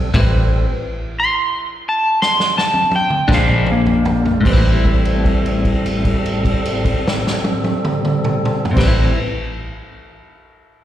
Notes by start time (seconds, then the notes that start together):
Already playing: B1 B4
0.13 A1 A2 G3 C4 E4 G4 A4 B4, kick, crash, ride
1.20 C6
1.89 A5
2.22 C6, snare
2.40 snare
2.58 A5, snare
2.74 high tom
2.91 high tom
2.96 G5
3.10 mid tom
3.28 A#1 A#2 F3 G#3 D4 G#4 A#4 C5, kick, snare, mid tom
3.34 D4 F5
3.48 mid tom
3.66 mid tom
3.72 A#3
3.86 floor tom
4.05 floor tom
4.25 floor tom
4.41 A2 C4
4.45 A1 G3 C4 G4 A4, kick, crash
4.50 C4 B4
4.57 E4
4.85 kick, crash
5.05 crash
5.25 kick, crash
5.46 crash
5.65 kick, crash
5.86 crash
6.05 kick, crash
6.26 crash
6.45 kick, crash
6.65 crash
6.85 kick, crash
7.08 snare
7.27 snare
7.44 high tom
7.64 high tom
7.85 mid tom
8.05 mid tom
8.25 mid tom
8.45 mid tom
8.65 floor tom
8.71 A2 C4
8.76 A1 G3 C4 G4 A4 B4, kick, snare, crash
8.83 C4
8.88 E4